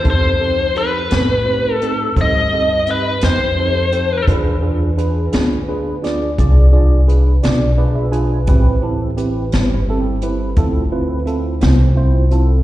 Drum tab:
HH |x-xx-xx-xx-x|x-xx-xx-xx-x|x-xx-xx-xx-x|
SD |---o-----o--|---o-o---o--|---o-----o--|
BD |o-----o-----|o-----o-----|o-----o-----|